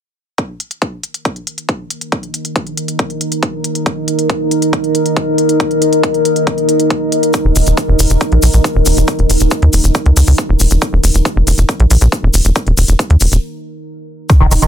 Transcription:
0.38 ambient pad D#4, kick, closed hi-hat
0.52 ambient pad A#4
0.60 closed hi-hat
0.71 closed hi-hat
0.82 kick, closed hi-hat
1.03 closed hi-hat
1.14 closed hi-hat
1.25 kick, closed hi-hat
1.36 closed hi-hat
1.47 ambient pad D#5, closed hi-hat
1.58 closed hi-hat
1.69 kick, closed hi-hat
1.90 closed hi-hat
2.01 closed hi-hat
2.12 kick, closed hi-hat
2.23 closed hi-hat
2.34 closed hi-hat
2.45 closed hi-hat
2.56 kick, closed hi-hat
2.67 closed hi-hat
2.77 closed hi-hat
2.88 closed hi-hat
2.99 kick, closed hi-hat
3.10 closed hi-hat
3.21 closed hi-hat
3.32 closed hi-hat
3.43 kick, closed hi-hat
3.64 closed hi-hat
3.75 closed hi-hat
3.86 kick, closed hi-hat
4.08 closed hi-hat
4.19 closed hi-hat
4.30 kick, closed hi-hat
4.51 closed hi-hat
4.62 closed hi-hat
4.73 kick, closed hi-hat
4.84 closed hi-hat
4.95 closed hi-hat
5.06 closed hi-hat
5.16 kick, closed hi-hat
5.38 closed hi-hat
5.49 closed hi-hat
5.60 kick, closed hi-hat
5.71 closed hi-hat
5.82 closed hi-hat
5.93 closed hi-hat
6.03 kick, closed hi-hat
6.14 closed hi-hat
6.25 closed hi-hat
6.36 closed hi-hat
6.47 kick, closed hi-hat
6.58 closed hi-hat
6.69 closed hi-hat
6.80 closed hi-hat
6.90 kick, closed hi-hat
7.12 closed hi-hat
7.23 closed hi-hat
7.33 kick, closed hi-hat, shaker
7.45 analog synth bass D#1
7.56 analog synth bass D#1, open hi-hat, shaker
7.67 analog synth bass D#1, closed hi-hat, shaker
7.77 kick, closed hi-hat, shaker
7.88 analog synth bass E1
7.99 analog synth bass E1, open hi-hat, shaker
8.10 analog synth bass E1, closed hi-hat, shaker
8.21 kick, closed hi-hat, shaker
8.32 analog synth bass A#1, closed hi-hat
8.42 analog synth bass A#1, open hi-hat, shaker
8.53 analog synth bass A#1, closed hi-hat, shaker
8.64 kick, closed hi-hat, shaker
8.75 analog synth bass D#1
8.86 analog synth bass D#1, open hi-hat, shaker
8.97 analog synth bass D#1, closed hi-hat, shaker
9.08 kick, closed hi-hat, shaker
9.19 analog synth bass D#1, closed hi-hat
9.30 analog synth bass D#1, open hi-hat, shaker
9.40 analog synth bass D#1, closed hi-hat, shaker
9.51 kick, closed hi-hat, shaker
9.62 analog synth bass D#2, closed hi-hat
9.73 analog synth bass D#1, open hi-hat, shaker
9.84 analog synth bass D#1, closed hi-hat, shaker
9.95 kick, closed hi-hat, shaker
10.06 analog synth bass C#2, closed hi-hat
10.17 analog synth bass C#2, open hi-hat, shaker
10.27 analog synth bass C#2, open hi-hat, shaker
10.38 kick, closed hi-hat, shaker
10.49 analog synth bass D#1
10.60 analog synth bass D#1, open hi-hat, shaker
10.70 analog synth bass D#1, closed hi-hat, shaker
10.82 kick, closed hi-hat, shaker
10.93 analog synth bass D#1
11.03 analog synth bass D#1, open hi-hat, shaker
11.14 analog synth bass D#1, closed hi-hat, shaker
11.25 kick, closed hi-hat, shaker
11.36 analog synth bass E1
11.47 analog synth bass E1, open hi-hat, shaker
11.58 analog synth bass E1, closed hi-hat, shaker
11.69 kick, closed hi-hat, shaker
11.80 analog synth bass A#1, closed hi-hat
11.90 analog synth bass A#1, open hi-hat, shaker
12.01 analog synth bass A#1, closed hi-hat, shaker
12.12 kick, closed hi-hat, shaker
12.23 analog synth bass D#1
12.34 analog synth bass D#1, open hi-hat, shaker
12.44 analog synth bass D#1, closed hi-hat, shaker
12.55 kick, closed hi-hat, shaker
12.67 analog synth bass D#1, closed hi-hat
12.77 analog synth bass D#1, open hi-hat, shaker
12.88 analog synth bass D#1, closed hi-hat, shaker
12.99 kick, closed hi-hat, shaker
13.10 analog synth bass D#2, closed hi-hat
13.20 analog synth bass D#1, open hi-hat, shaker
13.32 analog synth bass D#1, closed hi-hat, shaker
14.30 acid bass D#3, synth drone D#4, kick, closed hi-hat, shaker
14.40 analog synth bass D#1, acid bass D#3
14.51 analog synth bass D#1, acid bass D#3, open hi-hat, shaker
14.62 analog synth bass D#1, acid bass D#3, closed hi-hat, shaker

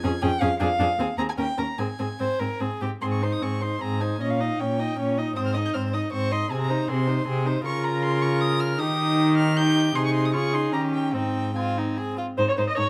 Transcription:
Already playing: violin G#5
0.04 cello F2, viola C#4, violin G#4
0.22 cello F2, viola C#4, violin G#4 G5
0.41 cello F2, viola C#4, violin G#4 F5
0.60 cello F2, viola D4, violin G#4 F5
0.79 cello F2, viola D4, violin G#4
0.98 cello D#2, viola C4, violin G#4
1.18 cello D#2, viola C4, violin G#4 A#5
1.29 violin G#5
1.37 cello D#2, viola C#4, violin A#4 G5
1.58 cello D#2, viola C#4, violin A#4 A#5
1.78 cello G#2, viola C4, violin G#4 G#5
1.99 cello G#2, viola C4, violin G#4
2.20 cello G#2, viola C4, violin C5
2.40 cello G#2, viola C4, violin A#4
2.60 cello G#2, viola C4, violin G#4
2.81 cello G#2, viola C4, violin G4
3.02 cello G#2, viola C4, violin G#4 C6
3.12 violin C#6
3.22 viola D#4, violin C5 C6
3.32 violin D#6
3.42 cello G#2, viola C4, violin G#4 C#6
3.61 viola D#4, violin C5 C6
3.81 cello G#2, viola C4, violin G#4 A#5
4.01 viola D#4, violin C5 G#5
4.21 cello A#2, viola C#4, violin C#5 D#5
4.30 violin F5
4.40 viola D#4, violin D#5
4.60 cello A#2, viola C#4, violin C#5 G5
4.79 viola D#4, violin D#5
4.98 cello A#2, viola C#4, violin C#5
5.18 viola D#4, violin D#5
5.36 cello G#2, viola C4, violin C5 D#6
5.46 violin F6
5.53 viola D#4, violin D#5 D#6
5.65 violin G6
5.74 cello G#2, viola C4, violin C5 F6
5.93 viola D#4, violin D#5 D#6
6.12 cello G#2, viola C4, violin C5 C#6
6.32 viola D#4, violin D#5 C6
6.51 cello C3, viola C4, violin G#4 G#5
6.61 violin A#5
6.70 viola D#4, violin C5
6.89 cello C3, viola C4, violin G#4 C6
7.07 viola D#4, violin C5
7.27 cello C3, viola C4, violin G#4
7.46 viola D#4, violin C5
7.66 cello C#3, viola F4, violin A#4 C#6
7.84 violin A#5
8.03 violin C6
8.22 violin C#6
8.41 violin D#6
8.60 violin F6
8.79 cello D#3, viola D#4, violin G4 D#6
9.37 violin F6
9.57 viola D#4, violin G4 G6
9.95 cello C3, viola D#4, violin G#4 C6
10.06 violin C#6
10.14 violin C6
10.25 violin D#6
10.33 cello C#3, viola F4, violin G#4 C#6
10.53 viola D#4, violin C6
10.72 cello D#3, viola C#4, violin G4 A#5
10.93 violin G5
11.13 cello G#2, viola C4, violin D#4 G5
11.56 viola C4, violin F4 G#5
11.78 violin D#4
11.97 violin G#4
12.18 violin F4
12.38 cello G#2, violin D#4 C5, viola C5
12.48 violin C#5, viola C#5
12.58 cello G#2, violin D#4 C5, viola C5
12.68 violin D#5, viola D#5
12.77 cello G#2, violin D#4 C#5, viola C#5

